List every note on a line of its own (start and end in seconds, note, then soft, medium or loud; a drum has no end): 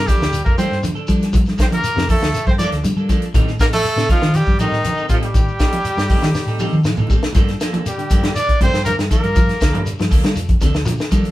0.00 0.12 C3 medium
0.07 0.23 F3 medium
0.07 0.45 G3 medium
0.07 0.23 A#3 medium
0.07 0.24 D4 medium
0.07 0.44 G4 medium
0.07 0.24 A4 medium
0.07 kick medium
0.07 closed hi-hat medium
0.07 high conga medium
0.07 shekere medium
0.20 0.40 D2 medium
0.20 0.37 D3 medium
0.20 snare medium
0.20 low conga medium
0.20 shekere soft
0.33 closed hi-hat medium
0.33 shekere medium
0.45 0.56 F2 loud
0.45 0.57 A#3 medium
0.45 0.57 A#3 soft
0.45 0.57 D4 soft
0.45 0.57 A4 soft
0.45 0.57 A#4 medium
0.45 kick medium
0.45 high conga medium
0.45 shekere soft
0.57 0.73 F3 medium
0.57 0.74 F3 medium
0.57 0.68 G3 medium
0.57 0.73 A#3 medium
0.57 0.82 C4 medium
0.57 0.74 D4 medium
0.57 0.74 A4 medium
0.57 0.82 C5 medium
0.57 closed hi-hat soft
0.57 high conga medium
0.57 shekere medium
0.71 0.80 G2 medium
0.71 snare soft
0.71 shekere soft
0.83 0.99 D3 medium
0.83 closed hi-hat medium
0.83 high conga medium
0.83 low conga medium
0.83 shekere medium
0.95 1.07 D4 medium
0.95 1.07 A4 medium
0.95 muted fingered electric bass stroke soft
0.95 shekere soft
1.07 1.23 F3 medium
1.07 1.24 F3 medium
1.07 1.65 G3 medium
1.07 1.24 D4 medium
1.07 1.24 A4 medium
1.07 kick medium
1.07 closed hi-hat soft
1.07 shekere medium
1.21 snare soft
1.21 closed hi-hat medium
1.21 shekere soft
1.33 1.49 F3 medium
1.33 kick medium
1.33 closed hi-hat medium
1.33 low conga medium
1.33 shekere medium
1.46 snare soft
1.46 high conga medium
1.46 shekere soft
1.58 1.73 F3 medium
1.58 1.73 A#3 medium
1.58 1.74 D4 medium
1.58 1.66 C5 medium
1.58 muted clean electric guitar stroke medium
1.58 kick medium
1.58 snare medium
1.58 closed hi-hat medium
1.58 shekere medium
1.62 1.67 C4 medium
1.71 1.87 D3 medium
1.71 2.07 A#4 loud
1.71 closed hi-hat soft
1.71 high conga loud
1.71 shekere soft
1.76 2.09 A#3 medium
1.84 muted fingered electric bass stroke soft
1.84 closed hi-hat medium
1.84 shekere medium
1.96 2.15 F2 loud
1.96 2.12 C3 medium
1.96 snare medium
1.96 high conga medium
1.96 shekere soft
2.09 2.24 F3 medium
2.09 2.45 A3 medium
2.09 2.24 A#3 medium
2.09 2.25 D4 medium
2.09 2.45 A4 medium
2.09 2.25 A4 medium
2.09 kick medium
2.09 open hi-hat medium
2.09 high conga medium
2.09 shekere medium
2.21 2.31 D2 medium
2.21 2.38 D3 medium
2.21 snare medium
2.21 shekere soft
2.34 snare soft
2.34 closed hi-hat medium
2.34 shekere medium
2.46 2.66 G2 medium
2.46 2.59 A#3 soft
2.46 2.59 A4 soft
2.46 2.53 C5 medium
2.46 kick medium
2.46 high conga medium
2.46 shekere soft
2.50 2.55 C4 medium
2.59 2.75 F3 medium
2.59 2.75 A#3 medium
2.59 2.75 D4 medium
2.59 2.75 A4 medium
2.59 2.70 D5 loud
2.59 snare soft
2.59 closed hi-hat medium
2.59 high conga loud
2.59 shekere medium
2.64 2.74 D4 medium
2.72 2.81 D2 medium
2.72 snare soft
2.72 closed hi-hat soft
2.72 shekere soft
2.84 3.00 D3 medium
2.84 2.94 G3 loud
2.84 closed hi-hat medium
2.84 high conga medium
2.84 low conga medium
2.84 shekere medium
2.97 3.15 G3 medium
2.97 3.08 A#3 soft
2.97 3.08 D4 medium
2.97 3.08 A4 medium
2.97 shekere soft
3.09 3.24 F3 medium
3.09 3.25 F3 medium
3.09 3.24 A#3 medium
3.09 3.24 D4 medium
3.09 3.25 A4 medium
3.09 kick medium
3.09 closed hi-hat soft
3.09 high conga medium
3.09 shekere medium
3.22 closed hi-hat soft
3.22 shekere soft
3.34 3.82 A2 loud
3.34 3.50 D#3 loud
3.34 3.49 G3 medium
3.34 3.50 C4 medium
3.34 3.50 D#4 medium
3.34 3.50 A4 medium
3.34 kick medium
3.34 closed hi-hat medium
3.34 low conga loud
3.34 shekere medium
3.48 snare soft
3.48 shekere soft
3.59 3.75 G3 soft
3.59 3.66 A#3 medium
3.59 3.75 C4 medium
3.59 3.75 D#4 medium
3.59 3.75 A4 medium
3.59 3.66 A#4 loud
3.59 kick medium
3.59 snare medium
3.59 closed hi-hat medium
3.59 shekere medium
3.73 4.08 A3 medium
3.73 4.07 A4 loud
3.73 closed hi-hat medium
3.73 high conga medium
3.73 shekere soft
3.84 closed hi-hat medium
3.84 shekere medium
3.96 4.06 A2 loud
3.96 4.13 C3 medium
3.96 snare medium
3.96 shekere soft
4.09 4.39 F3 medium
4.09 4.24 G3 medium
4.09 4.24 C4 medium
4.09 4.24 D#4 medium
4.09 4.37 F4 loud
4.09 4.25 A4 medium
4.09 kick medium
4.09 closed hi-hat medium
4.09 high conga medium
4.09 shekere medium
4.22 4.38 D#3 medium
4.22 4.41 D#3 medium
4.22 snare medium
4.22 low conga medium
4.22 shekere soft
4.34 4.61 G3 medium
4.34 4.60 G4 loud
4.34 closed hi-hat medium
4.34 shekere medium
4.47 4.56 G2 loud
4.47 kick medium
4.47 high conga medium
4.47 shekere soft
4.59 4.69 A2 medium
4.59 5.07 D#3 medium
4.59 4.74 G3 medium
4.59 4.75 G3 medium
4.59 4.75 C4 medium
4.59 4.75 D#4 medium
4.59 5.06 D#4 medium
4.59 4.75 A4 medium
4.59 closed hi-hat soft
4.59 high conga loud
4.59 shekere medium
4.71 4.81 A2 medium
4.71 snare soft
4.71 shekere soft
4.84 5.01 D#3 medium
4.84 closed hi-hat medium
4.84 high conga medium
4.84 low conga medium
4.84 shekere medium
4.97 5.09 C4 soft
4.97 5.09 D#4 soft
4.97 5.09 A4 soft
4.97 muted fingered electric bass stroke soft
4.97 shekere soft
5.09 5.66 A2 medium
5.09 5.26 G3 medium
5.09 5.25 G3 medium
5.09 5.25 C4 medium
5.09 5.25 D#4 medium
5.09 5.15 F4 medium
5.09 5.25 A4 medium
5.09 kick medium
5.09 closed hi-hat soft
5.09 shekere medium
5.14 5.18 F3 medium
5.22 6.82 G3 medium
5.22 6.81 G4 medium
5.22 closed hi-hat soft
5.22 shekere soft
5.34 5.50 D#3 medium
5.34 kick medium
5.34 closed hi-hat medium
5.34 low conga medium
5.34 shekere medium
5.48 shekere soft
5.59 5.75 C4 medium
5.59 5.75 D#4 medium
5.59 5.75 A4 medium
5.59 muted clean electric guitar stroke medium
5.59 kick medium
5.59 snare medium
5.59 closed hi-hat medium
5.59 shekere medium
5.72 muted clean electric guitar stroke medium
5.72 closed hi-hat medium
5.72 high conga loud
5.72 shekere soft
5.85 muted fingered electric bass stroke soft
5.85 closed hi-hat medium
5.85 shekere medium
5.97 6.16 G2 loud
5.97 muted clean electric guitar stroke medium
5.97 snare medium
5.97 shekere soft
6.10 6.25 C4 medium
6.10 6.25 D#4 medium
6.10 6.25 A4 medium
6.10 kick medium
6.10 open hi-hat medium
6.10 high conga medium
6.10 shekere medium
6.22 6.32 D#3 medium
6.22 6.38 D#3 medium
6.22 snare medium
6.22 low conga medium
6.22 shekere soft
6.35 snare medium
6.35 shekere medium
6.47 6.66 A2 medium
6.47 6.58 C4 soft
6.47 6.59 D#4 soft
6.47 6.60 A4 medium
6.47 shekere soft
6.59 6.75 G3 medium
6.59 6.76 G3 medium
6.59 6.75 C4 medium
6.59 6.75 D#4 medium
6.59 6.76 A4 medium
6.59 mid tom medium
6.59 high conga medium
6.59 shekere medium
6.72 6.82 D#3 medium
6.72 high conga medium
6.72 shekere soft
6.84 6.95 A2 loud
6.84 7.01 D#3 medium
6.84 snare medium
6.84 shekere medium
6.90 high conga medium
6.97 7.17 A2 medium
6.97 7.09 C4 soft
6.97 7.09 D#4 soft
6.97 7.10 A4 medium
6.97 mid tom medium
6.97 low conga medium
6.97 shekere soft
7.07 7.25 G3 medium
7.07 7.27 G3 medium
7.07 7.25 C4 medium
7.07 7.26 A4 medium
7.07 muted clean electric guitar stroke medium
7.07 kick medium
7.07 low conga loud
7.07 shekere medium
7.23 snare medium
7.23 low conga medium
7.23 shekere soft
7.33 7.54 G2 loud
7.33 7.50 F3 medium
7.33 7.52 F3 medium
7.33 7.50 A#3 medium
7.33 7.51 D4 medium
7.33 7.51 A4 medium
7.33 kick medium
7.33 closed hi-hat medium
7.33 low conga medium
7.33 shekere medium
7.37 low conga loud
7.48 snare soft
7.48 closed hi-hat soft
7.48 shekere soft
7.60 7.73 F3 medium
7.60 7.73 A#3 medium
7.60 7.73 D4 medium
7.60 7.72 A4 medium
7.60 snare medium
7.60 closed hi-hat medium
7.60 shekere medium
7.73 7.89 A#2 medium
7.73 7.89 A#3 soft
7.73 7.88 D4 soft
7.73 7.88 A4 soft
7.73 closed hi-hat soft
7.73 high conga loud
7.73 shekere soft
7.86 8.33 G3 medium
7.86 8.33 G4 medium
7.86 closed hi-hat medium
7.86 shekere medium
7.98 8.14 D3 medium
7.98 closed hi-hat soft
7.98 shekere soft
8.10 8.29 G2 medium
8.10 8.23 F3 medium
8.10 8.23 A#3 medium
8.10 8.23 D4 medium
8.10 8.22 A4 medium
8.10 kick medium
8.10 closed hi-hat medium
8.10 high conga medium
8.10 shekere medium
8.23 8.39 D3 medium
8.23 8.39 A#3 soft
8.23 8.38 D4 soft
8.23 8.38 A4 soft
8.23 snare medium
8.23 closed hi-hat soft
8.23 shekere soft
8.35 8.60 D4 medium
8.35 8.58 D5 loud
8.35 snare soft
8.35 closed hi-hat medium
8.35 shekere medium
8.49 kick medium
8.49 closed hi-hat soft
8.49 shekere soft
8.60 8.70 G2 medium
8.60 8.77 C3 medium
8.60 8.76 F3 medium
8.60 8.76 A#3 medium
8.60 8.85 C4 medium
8.60 8.76 D4 medium
8.60 8.76 A4 medium
8.60 8.84 C5 loud
8.60 kick medium
8.60 closed hi-hat medium
8.60 high conga medium
8.60 shekere medium
8.73 8.92 G2 medium
8.73 snare medium
8.73 shekere soft
8.85 9.02 D3 medium
8.85 8.98 A#3 medium
8.85 8.96 A#4 loud
8.85 closed hi-hat medium
8.85 high conga medium
8.85 low conga medium
8.85 shekere medium
8.99 9.08 G2 medium
8.99 snare medium
8.99 shekere soft
9.10 9.27 D#3 medium
9.10 9.26 F3 medium
9.10 9.26 A#3 medium
9.10 9.83 A#3 medium
9.10 9.26 D4 medium
9.10 9.26 A4 medium
9.10 9.82 A#4 medium
9.10 kick medium
9.10 closed hi-hat soft
9.10 shekere medium
9.23 9.52 G2 medium
9.23 closed hi-hat soft
9.23 shekere soft
9.35 9.52 F3 loud
9.35 kick medium
9.35 closed hi-hat medium
9.35 low conga medium
9.35 shekere loud
9.49 snare soft
9.49 closed hi-hat soft
9.49 shekere soft
9.61 9.74 D2 loud
9.61 9.74 F3 medium
9.61 9.73 A#3 medium
9.61 9.72 D4 medium
9.61 9.72 A4 medium
9.61 kick medium
9.61 snare medium
9.61 closed hi-hat medium
9.61 shekere medium
9.73 9.93 G2 medium
9.73 9.90 D3 medium
9.73 9.89 A#3 soft
9.73 9.89 D4 medium
9.73 9.88 A4 medium
9.73 closed hi-hat soft
9.73 high conga loud
9.73 shekere soft
9.86 closed hi-hat medium
9.86 shekere medium
9.99 10.09 G2 medium
9.99 10.16 F3 medium
9.99 snare medium
9.99 closed hi-hat soft
9.99 shekere soft
10.10 10.21 D2 medium
10.10 10.23 F3 medium
10.10 10.23 A#3 medium
10.10 10.22 D4 medium
10.10 10.22 A4 medium
10.10 kick medium
10.10 open hi-hat medium
10.10 high conga medium
10.10 shekere medium
10.23 10.40 D3 medium
10.23 10.33 G3 medium
10.23 10.39 A#3 soft
10.23 10.39 D4 medium
10.23 10.38 A4 medium
10.23 snare medium
10.23 closed hi-hat soft
10.23 shekere soft
10.36 10.55 F2 medium
10.36 closed hi-hat medium
10.36 shekere medium
10.48 kick medium
10.48 closed hi-hat soft
10.48 high conga medium
10.48 shekere soft
10.61 10.85 D2 loud
10.61 10.78 C3 medium
10.61 10.76 F3 medium
10.61 10.77 D4 medium
10.61 10.77 A4 medium
10.61 kick medium
10.61 snare soft
10.61 closed hi-hat medium
10.61 high conga medium
10.61 shekere medium
10.74 snare medium
10.74 shekere soft
10.85 10.95 A#2 loud
10.85 11.03 D3 medium
10.85 snare soft
10.85 closed hi-hat medium
10.85 high conga loud
10.85 low conga medium
10.85 shekere medium
10.98 snare medium
10.98 shekere soft
11.11 11.28 D#3 medium
11.11 11.26 F3 medium
11.11 11.21 G3 medium
11.11 11.27 A#3 medium
11.11 11.27 D4 medium
11.11 11.27 A4 medium
11.11 kick medium
11.11 closed hi-hat medium
11.11 shekere medium
11.24 closed hi-hat soft
11.24 shekere soft